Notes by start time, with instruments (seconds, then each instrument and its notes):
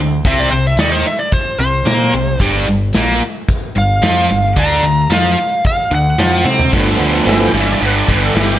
Already playing: picked electric bass D2
0.00 distorted electric guitar D3
0.25 picked electric bass C2, distorted electric guitar C3 C4, electric slide guitar E5, kick, closed hi-hat
0.39 electric slide guitar D5
0.51 picked electric bass C2, distorted electric guitar C3, electric slide guitar C5, closed hi-hat
0.67 electric slide guitar E5
0.77 picked electric bass D#2, distorted electric guitar D#3 D#4, electric slide guitar D5, snare, closed hi-hat
0.92 electric slide guitar C5
1.04 electric slide guitar E5, snare, closed hi-hat
1.19 electric slide guitar D5
1.32 electric slide guitar C5, kick, closed hi-hat
1.59 picked electric bass C2, distorted electric guitar C3, electric slide guitar C5, closed hi-hat
1.85 picked electric bass A#2, distorted electric guitar A#3 A#4, snare, closed hi-hat
2.12 picked electric bass C2, distorted electric guitar C3, closed hi-hat
2.39 picked electric bass G1, distorted electric guitar G2 G3, kick, closed hi-hat
2.66 picked electric bass G1, distorted electric guitar G2, closed hi-hat
2.93 picked electric bass A#1, distorted electric guitar A#2 A#3, snare, closed hi-hat
3.21 closed hi-hat
3.49 kick, closed hi-hat
3.75 picked electric bass G1, distorted electric guitar G2, electric slide guitar F5, closed hi-hat
4.02 picked electric bass F2, distorted electric guitar F3 F4, snare, closed hi-hat
4.29 picked electric bass G1, distorted electric guitar G2, closed hi-hat
4.56 picked electric bass D2, distorted electric guitar D3 D4, electric slide guitar A#5, kick, closed hi-hat
4.83 picked electric bass D2, distorted electric guitar D3, closed hi-hat
5.10 picked electric bass F2, distorted electric guitar F3 F4, electric slide guitar F5, snare, closed hi-hat
5.37 closed hi-hat
5.65 electric slide guitar F5, kick, closed hi-hat
5.91 picked electric bass D2, distorted electric guitar D3, electric slide guitar F#5, closed hi-hat
6.18 picked electric bass F2, distorted electric guitar F3 F4, snare, closed hi-hat
6.44 picked electric bass C3, distorted electric guitar C4 C5, snare
6.59 floor tom
6.72 picked electric bass G1, distorted electric guitar G2 D3, tonewheel organ F3 A3 B3, kick, crash
6.99 picked electric bass D2, distorted electric guitar G2 D3
7.25 picked electric bass G1, distorted electric guitar G2 E3, tonewheel organ E5, snare, open hi-hat
7.45 tonewheel organ G5
7.53 picked electric bass G1, distorted electric guitar G2 E3
7.60 tonewheel organ E5
7.71 tonewheel organ D5
7.80 picked electric bass G1, distorted electric guitar G2 D3, open hi-hat
7.85 tonewheel organ B4
7.97 tonewheel organ D5
8.08 picked electric bass G1, distorted electric guitar G2 D3, kick
8.12 tonewheel organ B4
8.25 tonewheel organ A4
8.34 picked electric bass G1, distorted electric guitar G2 E3, snare, open hi-hat
8.40 tonewheel organ G4